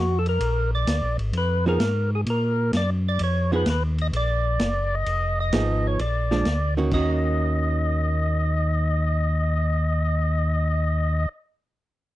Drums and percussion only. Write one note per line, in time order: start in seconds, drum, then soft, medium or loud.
0.26 ride soft
0.40 ride medium
0.87 snare medium
0.87 hi-hat pedal medium
0.87 ride medium
1.19 ride soft
1.33 ride medium
1.80 snare medium
1.80 hi-hat pedal medium
1.80 ride medium
2.26 ride medium
2.73 snare medium
2.73 hi-hat pedal soft
2.73 ride medium
3.19 ride medium
3.66 snare medium
3.66 hi-hat pedal medium
3.66 ride medium
3.98 ride soft
4.13 ride medium
4.59 snare medium
4.59 hi-hat pedal soft
4.59 ride medium
5.06 ride medium
5.52 snare medium
5.52 hi-hat pedal medium
5.52 ride medium
5.99 ride medium
6.31 snare soft
6.45 snare medium
6.45 hi-hat pedal soft
6.45 ride medium
6.91 kick soft
6.91 crash medium